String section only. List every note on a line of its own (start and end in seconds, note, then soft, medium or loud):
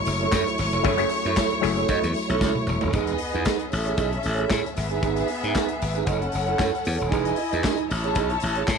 0.00 2.90 C#5 medium
0.00 2.90 C#6 medium
2.93 3.71 B3 medium
2.93 3.71 G#4 medium
2.93 3.71 D#5 medium
3.72 4.75 C#4 medium
3.72 4.75 A4 medium
3.72 4.75 E5 medium
4.76 6.05 B3 medium
4.76 6.05 G#4 medium
4.76 6.05 E5 medium
6.06 7.09 C#4 medium
6.06 7.09 A4 medium
6.06 7.09 F#5 medium
7.11 7.88 E4 medium
7.11 7.88 D#5 medium
7.11 7.88 G#5 medium
7.90 8.78 E4 medium
7.90 8.78 C#5 medium
7.90 8.78 A5 medium